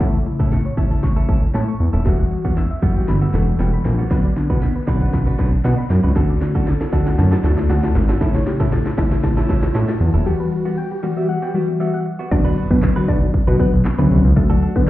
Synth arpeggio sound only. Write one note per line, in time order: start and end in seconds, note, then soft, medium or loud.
0.01 0.10 C#5 medium
0.14 0.23 E5 medium
0.52 0.61 C#7 medium
0.65 0.74 C#5 medium
0.91 1.00 A5 medium
1.03 1.13 C#6 loud
1.17 1.25 C#7 medium
1.54 1.64 A5 medium
1.68 1.77 C#6 medium
2.06 2.15 E5 loud
2.19 2.28 F#5 medium
2.57 2.67 E6 medium
2.71 2.79 E5 medium
2.96 3.05 G5 medium
3.08 3.18 B5 loud
3.22 3.30 E6 medium
3.60 3.69 G5 medium
3.73 3.82 B5 medium
4.11 4.20 B4 loud
4.25 4.33 D5 medium
4.62 4.72 B6 medium
4.76 4.84 B4 medium
5.01 5.10 F#5 medium
5.13 5.23 B5 loud
5.27 5.35 B6 medium
5.65 5.74 F#5 medium
5.78 5.87 B5 medium
6.16 6.25 A4 loud
6.29 6.38 D5 medium
6.67 6.77 A6 medium
6.81 6.89 A4 medium
7.06 7.15 F#5 medium
7.18 7.28 A5 loud
7.32 7.40 A6 medium
7.70 7.79 F#5 medium
7.83 7.92 A5 medium
8.21 8.31 A4 loud
8.35 8.43 C#5 medium
8.72 8.82 A6 medium
8.86 8.94 A4 medium
9.12 9.20 E5 medium
9.24 9.33 A5 loud
9.37 9.46 A6 medium
9.75 9.84 E5 medium
9.88 9.97 A5 medium
10.26 10.36 G4 loud
10.40 10.48 B4 medium
10.78 10.87 G5 loud
10.91 11.00 G4 medium
11.17 11.25 E5 medium
11.29 11.38 F#5 loud
11.42 11.51 G5 medium
11.80 11.90 E5 loud
11.94 12.02 F#5 medium